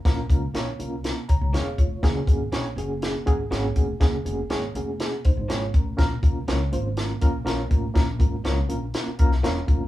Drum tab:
HH |x-x-x-x-x-x-x-x-|x-x-x-x-x-x-x-x-|x-x-x-x-x-x-x-x-|x-x-x-x-x-x-x-x-|
SD |o---o---o---o---|o---o---o---o---|o---o---o---o---|o---o---o---o---|
BD |o-o-------o---o-|o-o-------o---o-|o---------o---o-|o-o-------o---o-|

HH |x-x-x-x-x-x-x-x-|
SD |o---o---o--oo---|
BD |o-o-------o---o-|